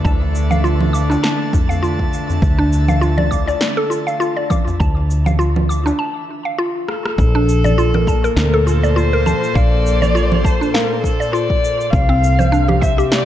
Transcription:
Already playing: D3 E3 A3 D4 D5 E5 A5
0.04 D2 A5, kick, cabasa
0.21 darbuka ka, darbuka tek
0.35 cabasa
0.51 F5, low conga, cabasa
0.64 F4, cabasa
0.81 low conga
0.93 D6, cabasa
1.10 D4, darbuka tek, cabasa
1.23 A5, snare, cabasa
1.53 kick, darbuka dum, cabasa
1.69 F5, darbuka dum, cabasa
1.83 F4, cabasa
1.99 kick
2.13 cabasa
2.30 darbuka dum, cabasa
2.42 D2, kick, cabasa
2.58 D4, darbuka ka
2.73 cabasa
2.88 F5, low conga, cabasa
3.01 F4, cabasa
3.18 D5, low conga
3.31 D6, kick, cabasa
3.47 D5, darbuka tek, cabasa
3.61 snare, cabasa
3.77 A4
3.90 F4, darbuka ka, cabasa
4.07 F5, cabasa
4.20 F4, cabasa
4.37 D5, darbuka tek
4.50 D6, kick, low conga, cabasa
4.67 darbuka tek, darbuka dum, cabasa
4.80 D2 A5, kick, cabasa
4.97 darbuka ka, darbuka tek
5.11 cabasa
5.26 F5, low conga, cabasa
5.39 F4, cabasa
5.56 low conga
5.69 D6, cabasa
5.86 D4, darbuka tek, cabasa
5.99 A5
6.45 F5
6.58 F4
6.88 A4, cross-stick
7.06 cross-stick
7.18 A#1 A#2, kick, cabasa
7.35 D4
7.43 A#3
7.49 cabasa
7.64 D5, low conga, cabasa
7.78 F4 A4, cabasa
7.94 A#4, low conga
8.04 C5, kick
8.08 A5, cabasa
8.24 A#4, cabasa
8.36 D2 A#4, snare, cabasa
8.54 A4
8.66 F4 A4, cabasa
8.83 D5, cabasa
8.96 F4 C5, cabasa
9.13 A#4
9.26 A5, low conga, cabasa
9.44 cabasa
9.54 A#1 D5 F5, kick, cabasa
9.86 cabasa
10.02 D5, low conga, cabasa
10.15 F4, cabasa
10.32 low conga
10.43 C5 A5, kick, cabasa
10.61 D4, cabasa
10.72 A#4 F5, snare, cabasa
11.02 A4, kick, cabasa
11.20 D5, cabasa
11.32 F4 D5, cabasa
11.50 kick
11.64 cabasa
11.81 cabasa
11.91 C2 C3 F5, kick, cabasa
12.09 C4
12.22 C4, cabasa
12.31 G4
12.39 C5, low conga, cabasa
12.52 D4, cabasa
12.68 G4, low conga
12.81 E5, kick, cabasa
12.98 G4, cabasa
13.09 D5 E5, snare, cabasa

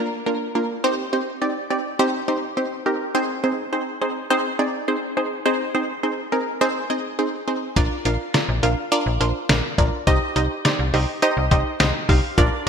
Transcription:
Already playing: A#3 D4 F4 A#4
0.26 A#3 D4 F4 A#4
0.55 A#3 D4 F4 A#4
0.84 C4 D#4 G4 C5
1.13 C4 D#4 G4 C5
1.42 C4 D#4 G4 D5
1.70 C4 D#4 G4 D5
1.99 C4 D#4 G4 C5
2.28 C4 D#4 G4 C5
2.57 C4 D#4 G4 C5
2.86 C4 D#4 G4 A#4
3.15 C4 D#4 G#4 C5
3.44 C4 D#4 G#4 C5
3.73 C4 D#4 G#4 C5
4.01 C4 D#4 G#4 C5
4.30 C4 D#4 G#4 C5
4.59 C4 D#4 G#4 D5
4.88 C4 D#4 G#4 C5
5.17 C4 D#4 G#4 C5
5.46 C4 D#4 G#4 C5
5.75 C4 D#4 G#4 C5
6.03 C4 D#4 G#4 C5
6.32 C4 D#4 G#4 A#4
6.61 C4 D#4 G#4 C5
6.90 C4 D#4 G#4 D#5
7.19 C4 D#4 G#4 C5
7.48 C4 D#4 G#4 C5
7.76 A#1 D4 F4 A#4 D5, kick, closed hi-hat
8.05 A#1 D4 F4 A#4 F5, closed hi-hat
8.34 D4 F4 A#4 D5, snare, closed hi-hat
8.49 A#1
8.63 A#1 D4 F4 A#4 F5, closed hi-hat
8.92 D4 F4 A#4 D5, closed hi-hat
9.06 A#1
9.20 A#1 D4 F4 A#4 C5, closed hi-hat
9.49 A#1 D4 F4 A#4 D5, snare, closed hi-hat
9.78 A#1 D4 F4 A#4 D5, kick, closed hi-hat
10.07 C2 D#4 G4 C5 D#5, kick, closed hi-hat
10.36 C2 D#4 G4 C5 D#5, closed hi-hat
10.65 D#4 G4 C5 D5, snare, closed hi-hat
10.79 C2
10.94 C2 D#4 G4 C5 D#5, open hi-hat
11.22 D#4 G4 C5 D#5, closed hi-hat
11.37 C2
11.51 C2 D#4 G4 C5 D#5, kick, closed hi-hat
11.80 C2 D#4 G4 C5 D#5, snare, closed hi-hat
12.09 C2 D#4 G4 C5 F5, kick, open hi-hat
12.38 A#1 D4 F4 A#4 D5, kick, closed hi-hat

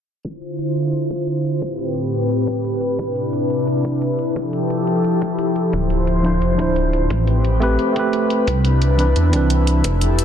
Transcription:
0.25 D3 E4 F4 C5, kick, closed hi-hat
0.42 closed hi-hat
0.59 closed hi-hat
0.76 closed hi-hat
0.93 closed hi-hat
1.10 kick, closed hi-hat
1.27 closed hi-hat
1.45 closed hi-hat
1.61 A2 C4 G4 B4, kick, closed hi-hat
1.79 closed hi-hat
1.96 closed hi-hat
2.13 closed hi-hat
2.30 closed hi-hat
2.47 kick, closed hi-hat
2.64 closed hi-hat
2.82 closed hi-hat
2.99 C3 D4 E4, kick, closed hi-hat
3.16 closed hi-hat
3.33 closed hi-hat
3.50 closed hi-hat
3.67 closed hi-hat
3.85 kick, closed hi-hat
4.02 closed hi-hat
4.19 closed hi-hat
4.36 F3 G4 A4, kick, closed hi-hat
4.53 closed hi-hat
4.70 closed hi-hat
4.87 closed hi-hat
5.04 closed hi-hat
5.21 kick, closed hi-hat
5.39 closed hi-hat
5.56 closed hi-hat
5.73 D1 F3 C5, kick, closed hi-hat
5.90 closed hi-hat
6.07 closed hi-hat
6.23 F3 D4 E4 C5, closed hi-hat
6.42 F1, closed hi-hat
6.55 D1 F3 D4, kick, closed hi-hat
6.60 E4 C5
6.76 closed hi-hat
6.93 closed hi-hat
7.10 A1 C4 G4 B4, kick, closed hi-hat
7.27 closed hi-hat
7.44 closed hi-hat
7.60 A3 C4 G4 B4, closed hi-hat
7.79 closed hi-hat
7.93 A3 C4, kick, closed hi-hat
7.97 G4 B4
8.13 closed hi-hat
8.30 closed hi-hat
8.47 C2 D4 E4, kick, closed hi-hat
8.65 closed hi-hat
8.82 closed hi-hat
8.97 E3 C4 D4 B4, closed hi-hat
9.16 E2, closed hi-hat
9.30 C2 E3 C4, kick, closed hi-hat
9.34 D4 B4
9.50 closed hi-hat
9.67 closed hi-hat
9.84 F1 G4 A4, kick, closed hi-hat
10.01 closed hi-hat
10.19 closed hi-hat

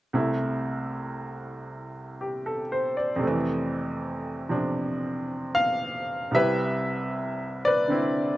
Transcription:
0.13 C2 C3 A3 E4
2.21 G4
2.46 A4
2.72 C5
2.97 D5
3.16 F2 C3
3.23 E3 A3
4.49 C3 F3 D4
5.55 F5
6.31 C2 C3 G3 E5
6.36 E4 B4
7.65 B4 D5
7.88 D3 C4 E4

